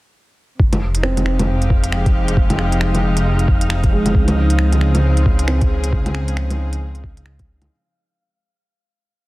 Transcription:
0.58 4.13 F1 medium
0.58 4.15 C3 medium
0.58 7.71 F5 medium
0.58 kick loud
0.70 7.70 F3 medium
0.70 closed hi-hat soft
0.70 low bongo medium
0.95 7.70 D#4 medium
0.95 closed hi-hat medium
1.03 4.14 G#3 medium
1.03 2.24 C4 medium
1.03 finger snap loud
1.17 closed hi-hat soft
1.17 low bongo soft
1.26 4.14 G4 medium
1.26 finger snap medium
1.40 closed hi-hat medium
1.40 low bongo medium
1.62 closed hi-hat soft
1.70 kick loud
1.84 closed hi-hat medium
1.93 finger snap medium
2.06 kick loud
2.06 closed hi-hat soft
2.28 closed hi-hat medium
2.37 kick loud
2.50 closed hi-hat soft
2.50 low bongo medium
2.59 finger snap medium
2.72 closed hi-hat medium
2.81 finger snap loud
2.95 closed hi-hat soft
2.95 low bongo soft
3.17 closed hi-hat medium
3.39 closed hi-hat soft
3.48 kick loud
3.61 closed hi-hat medium
3.70 finger snap loud
3.84 kick loud
3.84 closed hi-hat soft
3.92 4.34 G#3 medium
4.06 closed hi-hat medium
4.06 low bongo soft
4.11 7.68 C#2 medium
4.11 7.70 C#3 medium
4.11 4.50 C4 soft
4.15 kick loud
4.25 4.61 D#4 medium
4.25 closed hi-hat soft
4.25 low bongo medium
4.31 7.70 C4 medium
4.50 closed hi-hat medium
4.59 finger snap loud
4.70 7.70 G#4 medium
4.70 closed hi-hat soft
4.70 low bongo soft
4.81 finger snap medium
4.95 closed hi-hat medium
4.95 low bongo medium
5.17 closed hi-hat soft
5.26 kick loud
5.39 closed hi-hat medium
5.48 6.69 C4 medium
5.48 finger snap loud
5.61 kick loud
5.61 closed hi-hat soft
5.84 closed hi-hat medium
5.93 kick loud
6.06 closed hi-hat soft
6.06 low bongo medium
6.15 finger snap medium
6.28 closed hi-hat medium
6.37 finger snap loud
6.51 closed hi-hat soft
6.51 low bongo soft
6.73 closed hi-hat medium
6.95 closed hi-hat soft
7.04 kick loud
7.17 closed hi-hat medium
7.26 finger snap loud
7.39 kick loud
7.39 closed hi-hat soft
7.62 closed hi-hat medium
7.62 low bongo soft

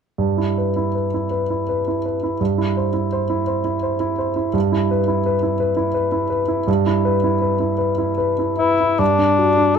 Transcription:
0.18 2.36 G2 soft
0.38 0.68 E4 soft
0.58 0.87 B4 soft
0.76 1.06 E4 soft
0.95 1.24 B4 soft
1.14 1.43 E4 soft
1.31 1.60 B4 soft
1.50 1.79 E4 soft
1.69 1.98 B4 soft
1.88 2.16 E4 soft
2.06 2.33 B4 soft
2.23 2.41 E4 soft
2.41 4.51 G2 soft
2.58 2.87 E4 soft
2.77 3.05 C5 soft
2.93 3.23 E4 soft
3.12 3.41 C5 soft
3.30 3.58 E4 soft
3.47 3.76 C5 soft
3.64 3.93 E4 soft
3.83 4.11 C5 soft
4.00 4.29 E4 soft
4.18 4.47 C5 soft
4.36 4.54 E4 soft
4.53 6.63 G2 soft
4.72 5.00 E4 soft
4.91 5.18 B4 soft
5.08 5.36 E4 soft
5.26 5.53 B4 soft
5.43 5.70 E4 soft
5.60 5.88 B4 soft
5.77 6.05 E4 soft
5.94 6.23 B4 soft
6.12 6.41 E4 soft
6.30 6.60 B4 soft
6.48 6.67 E4 soft
6.67 8.96 G2 soft
6.86 7.16 E4 soft
7.05 7.34 B4 soft
7.24 7.53 E4 soft
7.42 7.72 B4 soft
7.60 7.91 E4 soft
7.78 8.10 B4 soft
7.98 8.31 E4 soft
8.18 8.51 B4 soft
8.39 8.72 E4 soft
8.58 9.01 E4 soft
8.58 8.92 B4 soft
8.80 9.00 E4 soft
8.99 9.79 G2 soft
8.99 9.77 D4 medium
9.19 9.49 D4 soft
9.38 9.68 F#4 soft
9.57 9.79 D4 soft
9.75 9.79 A4 medium

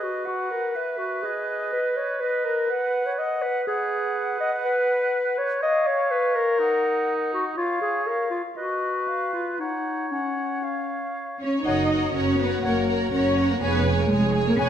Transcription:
0.00 0.26 F#4 soft
0.00 3.51 B4 soft
0.00 0.27 D#5 soft
0.25 0.51 F#4 medium
0.25 0.77 F#5 soft
0.51 0.77 A#4 medium
0.75 0.99 B4 soft
0.75 1.26 E5 soft
0.98 1.24 F#4 medium
1.23 1.72 G#4 soft
1.23 2.20 D#5 soft
1.73 1.98 B4 medium
1.97 2.22 C#5 medium
2.20 2.46 B4 medium
2.20 2.68 D#5 soft
2.45 2.72 A#4 medium
2.69 3.08 B4 medium
2.69 3.17 F#5 soft
3.06 3.20 C#5 medium
3.18 3.43 D#5 medium
3.18 3.66 F#5 soft
3.42 3.67 B4 medium
3.67 4.38 G#4 medium
3.67 5.62 B4 medium
3.67 5.37 F#5 soft
4.40 4.51 D#5 medium
4.64 5.40 B4 medium
5.38 5.62 C#5 medium
5.61 6.61 C#5 medium
5.61 5.88 D#5 medium
5.61 6.58 F5 soft
5.87 6.12 C#5 medium
6.11 6.37 B4 medium
6.35 7.33 A#4 medium
6.59 7.57 D#4 medium
6.59 7.56 F#5 soft
7.34 7.45 F#4 medium
7.56 7.81 F4 medium
7.56 8.52 C#5 medium
7.56 8.02 F5 soft
7.81 8.08 G#4 medium
8.07 8.30 A#4 medium
8.07 8.58 F5 soft
8.31 8.42 F4 medium
8.56 9.31 F#4 medium
8.56 9.58 B4 soft
8.56 9.09 D#5 soft
9.08 9.59 F5 soft
9.33 9.61 F4 medium
9.59 10.13 D#4 medium
9.59 11.38 C#5 soft
9.59 10.11 F#5 soft
10.11 11.15 C#4 soft
10.11 10.65 F#5 soft
10.63 11.41 F5 soft
11.40 11.64 C#4 soft
11.40 11.64 C#5 soft
11.65 12.10 F#1 soft
11.65 12.14 D#4 medium
11.65 13.58 F#4 soft
11.65 11.90 A#4 soft
11.65 11.90 C#5 soft
11.65 14.69 C#5 soft
11.65 11.84 C#5 soft
11.65 12.16 D#5 medium
11.65 11.89 F#5 soft
11.65 11.90 F#5 soft
11.91 12.15 A#4 soft
11.91 12.15 C#5 soft
11.91 12.13 F#5 soft
12.14 12.59 F#1 soft
12.14 12.39 C#4 medium
12.14 12.40 A#4 soft
12.14 12.40 C#5 soft
12.14 12.38 F#5 soft
12.39 12.65 B3 medium
12.39 12.64 A#4 soft
12.39 12.65 B4 soft
12.39 12.64 C#5 soft
12.39 12.61 F#5 soft
12.63 13.07 F#1 soft
12.63 13.12 A#3 medium
12.63 13.13 A#4 medium
12.63 12.88 A#4 soft
12.63 12.81 C#5 soft
12.63 12.89 C#5 soft
12.63 12.86 F#5 soft
12.87 13.12 A#4 soft
12.87 13.12 C#5 soft
12.87 13.11 F#5 soft
13.12 13.57 F#1 soft
13.12 13.50 C#4 medium
13.12 13.37 A#4 soft
13.12 13.37 C#5 soft
13.12 13.50 C#5 medium
13.12 13.35 F#5 soft
13.37 13.62 A#4 soft
13.37 13.62 C#5 soft
13.37 13.61 F#5 soft
13.50 13.63 A#3 medium
13.50 13.63 A#4 soft
13.61 14.05 F1 medium
13.61 13.98 B3 medium
13.61 13.87 G#4 soft
13.61 14.69 G#4 soft
13.61 13.98 B4 medium
13.61 13.80 C#5 soft
13.61 13.86 C#5 soft
13.61 13.85 G#5 soft
13.86 14.11 G#4 soft
13.86 14.11 C#5 soft
13.86 14.09 G#5 soft
13.99 14.11 A#3 medium
13.99 14.12 A#4 soft
14.10 14.54 F1 medium
14.10 14.46 G#3 medium
14.10 14.47 G#4 medium
14.10 14.35 G#4 soft
14.10 14.35 C#5 soft
14.10 14.34 G#5 soft
14.35 14.59 G#4 soft
14.35 14.59 C#5 soft
14.35 14.58 G#5 soft
14.47 14.52 A#3 medium
14.47 14.59 A#4 medium
14.58 14.69 F1 medium
14.58 14.66 B3 medium
14.58 14.69 G#4 medium
14.58 14.69 B4 medium
14.58 14.69 C#5 medium
14.58 14.69 G#5 medium
14.58 14.69 G#5 soft

